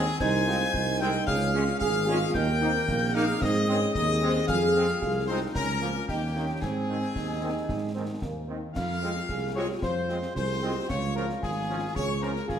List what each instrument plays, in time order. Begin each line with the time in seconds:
Already playing: woodwind section C4, trumpet section G#4, piccolo G#5
0.20 tuba C2, euphonium D#4, woodwind section C5, trumpet section G#5, piccolo G#6, concert bass drum, snare, crash
0.47 trombone section G#3 C4, french horn section G#3 D#4, euphonium F4
0.61 snare
0.73 tuba C2, euphonium D#4, concert bass drum, snare
1.00 french horn section G#3 D#4, trombone section G#3 C4, woodwind section A#4, trumpet section G5, piccolo G6
1.27 tuba C#2, euphonium C#4, woodwind section G#4, trumpet section F5, piccolo F6, concert bass drum, snare
1.54 trombone section G#3 C#4, french horn section G#3 C#4 F4, euphonium F4, snare
1.68 snare
1.80 tuba G#1, woodwind section G#4, euphonium G#4, trumpet section F5, piccolo F6, concert bass drum, snare
2.08 trombone section G#3 C#4, french horn section G#3 C#4 F4, euphonium F4
2.34 tuba D#2, euphonium D#4, woodwind section A#4, trumpet section G5, piccolo G6, concert bass drum, snare, crash
2.61 french horn section D#3 A#3 D#4, trombone section A#3 D#4, euphonium C4
2.75 snare
2.88 tuba A#1, euphonium A#3, concert bass drum, snare
3.14 french horn section D#3 A#3 D#4, trombone section A#3 D#4, woodwind section G#4, trumpet section F5, piccolo F6
3.41 tuba G#2, euphonium C4, woodwind section G#4, trumpet section D#5, piccolo D#6, concert bass drum, snare
3.67 french horn section D#3 G#3 C4, trombone section G#3 C4, euphonium C#4, snare
3.82 snare
3.95 tuba D#2, euphonium D#4, woodwind section G#4, trumpet section D#5, piccolo D#6, concert bass drum, snare
4.22 french horn section D#3 G#3 C4, trombone section G#3 C4, euphonium C4
4.47 tuba F2, woodwind section G#4, euphonium G#4, trumpet section F5, piccolo F6, concert bass drum, snare, crash
4.76 french horn section F3 G#3 C4, trombone section G#3 C4
4.89 snare
5.02 tuba C2, euphonium F4, concert bass drum, snare
5.27 french horn section F3 G#3 C4, trombone section G#3 C4, woodwind section D#4, euphonium D#4, trumpet section C5, piccolo C6
5.55 tuba C#2, woodwind section C#4, euphonium C#4, trumpet section A#4, piccolo A#5, concert bass drum, snare
5.82 french horn section F3 A#3, trombone section F3 A#3, euphonium F4, snare
5.96 snare
6.08 tuba D#2, woodwind section A#3, euphonium D#4, trumpet section G4, piccolo G5, concert bass drum, snare
6.35 trombone section D#3 A#3, french horn section D#3 A#3 D#4, euphonium C#4
6.61 tuba G#2, woodwind section C4, euphonium C4, trumpet section G#4, piccolo G#5, concert bass drum, snare, crash
6.88 trombone section D#3 C4, french horn section D#3 C4 D#4
7.02 snare
7.15 tuba D#2, euphonium D#4, concert bass drum, snare
7.42 trombone section D#3 C4, french horn section D#3 C4 D#4
7.69 tuba G#2, concert bass drum, snare
7.95 trombone section D#3 C4, french horn section D#3 C4 D#4, euphonium C4
8.22 tuba D#2, euphonium A#3, concert bass drum, snare
8.48 trombone section D#3 C4, french horn section D#3 C4 D#4
8.75 tuba F2, woodwind section F5, trumpet section F5, piccolo F6, concert bass drum, snare, crash
9.02 trombone section G#3 C4, french horn section G#3 C4 F4
9.16 snare
9.28 tuba C2, euphonium G#4, concert bass drum, snare
9.55 trombone section G#3 C4, french horn section G#3 C4 F4, euphonium G4, woodwind section C#5, trumpet section C#5, piccolo C#6
9.82 tuba F2, euphonium F4, woodwind section C5, trumpet section C5, piccolo C6, concert bass drum, snare
10.09 french horn section G#3 C4 F4, trombone section G#3 C4, snare
10.23 snare
10.35 tuba C2, euphonium G#4, woodwind section C5, trumpet section C5, piccolo C6, concert bass drum, snare
10.62 trombone section G#3 C4, french horn section G#3 C4 F4, euphonium G4
10.88 tuba C#2, euphonium F4, woodwind section C#5, trumpet section C#5, piccolo C#6, concert bass drum, snare, crash
11.15 trombone section F3 C#4, french horn section G#3 C#4 F4, woodwind section A#4, trumpet section A#4, piccolo A#5
11.29 snare
11.42 tuba G#1, woodwind section G#4, trumpet section G#4, piccolo G#5, concert bass drum, snare
11.69 trombone section F3 C#4, french horn section G#3 C#4 F4
11.95 tuba C#2, euphonium G#4, woodwind section C#5, trumpet section C#5, piccolo C#6, concert bass drum, snare
12.22 trombone section F3 C#4, french horn section G#3 C#4 F4, woodwind section A#4, trumpet section A#4, piccolo A#5, snare
12.36 snare
12.48 tuba G#1, euphonium F4, trumpet section G#4, woodwind section G#4, piccolo G#5, concert bass drum, snare